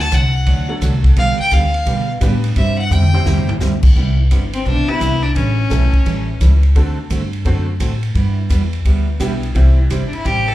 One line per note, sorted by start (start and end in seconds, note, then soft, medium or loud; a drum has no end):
0.00 0.10 D2 medium
0.00 0.16 A5 loud
0.11 0.45 C2 medium
0.11 0.23 D3 medium
0.11 0.23 F#3 medium
0.11 0.23 A3 medium
0.11 0.23 D4 medium
0.11 0.23 F#4 medium
0.11 0.70 F#5 medium
0.11 kick soft
0.11 hi-hat pedal medium
0.11 ride medium
0.46 0.80 D2 medium
0.46 0.68 D3 medium
0.46 0.68 F#3 medium
0.46 0.68 A3 medium
0.46 0.68 D4 medium
0.46 0.69 F#4 medium
0.46 kick soft
0.46 ride medium
0.68 1.13 F#3 medium
0.68 1.14 A3 medium
0.68 1.14 D4 medium
0.68 1.14 F#4 medium
0.68 1.14 A4 medium
0.81 1.15 C2 medium
0.81 0.93 D3 medium
0.81 0.93 F#3 medium
0.81 0.93 A3 medium
0.81 0.93 D4 medium
0.81 0.93 F#4 medium
0.81 kick soft
0.81 hi-hat pedal medium
0.81 ride medium
1.04 kick medium
1.04 ride medium
1.16 1.37 B1 medium
1.16 1.38 D3 medium
1.16 1.38 G3 medium
1.16 1.38 B3 medium
1.16 1.38 D4 medium
1.16 1.38 G4 medium
1.16 1.38 F5 loud
1.16 kick soft
1.16 ride medium
1.39 1.54 G5 loud
1.39 muted upright bass stroke soft
1.51 1.85 D2 loud
1.51 1.63 D3 medium
1.51 1.63 G3 medium
1.51 1.63 B3 medium
1.51 1.63 D4 medium
1.51 1.64 G4 medium
1.51 2.09 F5 loud
1.51 kick soft
1.51 hi-hat pedal medium
1.51 ride medium
1.74 ride soft
1.86 2.20 B2 medium
1.86 2.08 D3 medium
1.86 2.08 G3 medium
1.86 2.08 B3 medium
1.86 2.08 D4 medium
1.86 2.08 G4 medium
1.86 kick soft
1.86 ride medium
2.21 2.55 A2 medium
2.21 2.32 D3 medium
2.21 2.56 G3 medium
2.21 2.33 G3 medium
2.21 2.56 B3 medium
2.21 2.33 B3 medium
2.21 2.56 D4 medium
2.21 2.33 D4 medium
2.21 2.56 G4 medium
2.21 2.33 G4 medium
2.21 2.56 B4 medium
2.21 kick soft
2.21 hi-hat pedal medium
2.21 ride medium
2.44 ride medium
2.56 2.90 G2 medium
2.56 2.78 C3 medium
2.56 2.78 G3 medium
2.56 2.78 C4 medium
2.56 2.78 E4 medium
2.56 2.78 G4 medium
2.56 2.77 E5 medium
2.56 kick soft
2.56 ride medium
2.78 2.94 F#5 loud
2.90 3.24 F2 loud
2.90 3.02 C3 medium
2.90 3.03 G3 medium
2.90 3.03 C4 medium
2.90 3.03 E4 medium
2.90 3.03 G4 medium
2.90 3.49 G5 loud
2.90 hi-hat pedal medium
2.90 mid tom medium
3.02 mid tom medium
3.14 3.58 G3 medium
3.14 3.58 C4 medium
3.14 3.58 E4 medium
3.14 3.59 G4 medium
3.14 3.59 C5 medium
3.14 mid tom medium
3.26 3.60 E2 medium
3.26 3.47 C3 medium
3.26 3.48 G3 medium
3.26 3.48 C4 medium
3.26 3.48 E4 medium
3.26 3.48 G4 medium
3.26 snare medium
3.38 floor tom medium
3.49 floor tom loud
3.60 3.94 D2 medium
3.60 3.72 C3 medium
3.60 3.72 G3 medium
3.60 3.72 C4 medium
3.60 3.72 E4 medium
3.60 3.73 G4 medium
3.60 snare medium
3.60 hi-hat pedal medium
3.83 kick medium
3.83 crash medium
3.95 4.30 C2 medium
3.95 4.17 C3 medium
3.95 4.18 G3 medium
3.95 4.17 B3 medium
3.95 4.18 E4 medium
3.95 4.18 G4 medium
4.31 4.65 G1 medium
4.31 4.42 C3 medium
4.31 4.42 G3 medium
4.31 4.42 B3 medium
4.31 4.43 E4 medium
4.31 4.43 G4 medium
4.31 kick soft
4.31 hi-hat pedal soft
4.31 ride medium
4.53 4.65 C4 medium
4.53 ride medium
4.66 4.87 B1 medium
4.66 4.87 C3 medium
4.66 4.88 G3 medium
4.66 4.88 B3 medium
4.66 4.90 D4 medium
4.66 4.88 E4 medium
4.66 4.88 G4 medium
4.66 kick soft
4.88 5.33 B3 medium
4.88 5.33 C4 medium
4.88 5.24 E4 loud
4.88 5.33 E4 medium
4.88 5.33 G4 medium
4.88 5.33 B4 medium
4.88 muted upright bass stroke soft
5.00 5.35 C2 medium
5.00 5.12 C3 medium
5.00 5.12 G3 medium
5.00 5.12 B3 medium
5.00 5.12 E4 medium
5.00 5.12 G4 medium
5.00 kick soft
5.00 hi-hat pedal medium
5.00 ride medium
5.22 5.35 D4 medium
5.35 5.70 A1 medium
5.35 5.57 E3 medium
5.35 5.57 G3 medium
5.35 6.59 C#4 medium
5.35 5.57 C#4 medium
5.35 5.57 E4 medium
5.35 5.58 A4 medium
5.35 kick soft
5.35 ride medium
5.70 5.91 B1 medium
5.70 5.82 E3 medium
5.70 5.82 G3 medium
5.70 5.90 A3 medium
5.70 5.91 C#4 medium
5.70 5.82 C#4 medium
5.70 5.82 E4 medium
5.70 5.91 E4 medium
5.70 5.91 G4 medium
5.70 5.82 A4 medium
5.70 5.91 A4 medium
5.70 kick soft
5.70 hi-hat pedal medium
5.70 ride medium
5.93 muted upright bass stroke soft
5.93 kick soft
5.93 ride soft
6.06 6.39 A1 medium
6.06 6.27 E3 medium
6.06 6.27 G3 medium
6.06 6.27 C#4 medium
6.06 6.28 E4 medium
6.06 6.28 A4 medium
6.06 ride medium
6.40 6.74 C#2 medium
6.40 6.52 E3 medium
6.40 6.52 G3 medium
6.40 6.52 C#4 medium
6.40 6.52 E4 medium
6.40 6.52 A4 medium
6.40 kick soft
6.40 hi-hat pedal medium
6.40 ride medium
6.63 ride soft
6.75 7.09 D2 medium
6.75 6.97 D3 medium
6.75 6.96 A3 medium
6.75 6.97 A3 medium
6.75 6.95 C4 medium
6.75 6.98 C4 medium
6.75 6.96 D4 medium
6.75 6.96 F#4 medium
6.75 6.98 F#4 medium
6.75 6.96 A4 medium
6.75 6.98 A4 medium
6.75 kick soft
6.75 ride medium
7.10 7.44 G2 medium
7.10 7.21 D3 medium
7.10 7.22 A3 medium
7.10 7.22 C4 medium
7.10 7.22 F#4 medium
7.10 7.22 A4 medium
7.10 kick soft
7.10 hi-hat pedal medium
7.10 ride medium
7.33 ride soft
7.45 7.79 F#2 medium
7.45 7.67 D3 medium
7.45 7.65 A3 medium
7.45 7.67 A3 medium
7.45 7.65 C4 medium
7.45 7.67 C4 medium
7.45 7.66 D4 medium
7.45 7.67 F#4 medium
7.45 7.66 F#4 medium
7.45 7.67 A4 medium
7.45 7.66 C5 medium
7.45 kick soft
7.45 ride medium
7.80 8.14 A2 medium
7.80 7.91 D3 medium
7.80 7.92 A3 medium
7.80 7.92 C4 medium
7.80 7.92 F#4 medium
7.80 7.92 A4 medium
7.80 kick soft
7.80 hi-hat pedal medium
7.80 ride medium
8.03 ride soft
8.15 8.49 G2 medium
8.15 8.37 G3 medium
8.15 8.37 B3 medium
8.15 8.37 E4 medium
8.15 8.37 G4 medium
8.15 kick soft
8.15 ride medium
8.49 8.84 E2 medium
8.49 8.61 G3 medium
8.49 8.61 B3 medium
8.49 8.61 E4 medium
8.49 8.62 G4 medium
8.49 kick soft
8.49 hi-hat pedal medium
8.49 ride medium
8.73 ride soft
8.85 9.19 D2 medium
8.85 9.07 G3 medium
8.85 9.07 B3 medium
8.85 9.07 E4 medium
8.85 9.07 G4 medium
8.85 kick soft
8.85 ride medium
9.20 9.54 B1 medium
9.20 9.31 G3 medium
9.20 9.53 G3 medium
9.20 9.31 B3 medium
9.20 9.55 B3 medium
9.20 9.55 D4 medium
9.20 9.32 E4 medium
9.20 9.54 E4 medium
9.20 9.32 G4 medium
9.20 9.54 G4 medium
9.20 kick soft
9.20 hi-hat pedal medium
9.20 ride medium
9.43 ride soft
9.55 9.89 C2 medium
9.55 9.77 C3 medium
9.55 10.52 E3 medium
9.55 10.52 G3 medium
9.55 9.77 G3 medium
9.55 10.53 C4 medium
9.55 9.77 C4 medium
9.55 9.77 E4 medium
9.55 10.53 E4 medium
9.55 9.77 G4 medium
9.55 10.53 G4 medium
9.55 kick soft
9.55 ride medium
9.90 10.11 G1 medium
9.90 10.02 C3 medium
9.90 10.02 G3 medium
9.90 10.02 C4 medium
9.90 10.02 E4 medium
9.90 10.02 G4 medium
9.90 kick soft
9.90 hi-hat pedal medium
9.90 ride medium
10.07 10.14 D4 medium
10.13 10.27 E4 medium
10.13 muted upright bass stroke soft
10.13 ride soft
10.25 10.55 A1 medium
10.25 10.46 C3 medium
10.25 10.47 G3 medium
10.25 10.47 C4 medium
10.25 10.47 E4 medium
10.25 10.49 G4 loud
10.25 10.47 G4 medium
10.25 kick soft
10.25 ride medium
10.48 10.55 A4 loud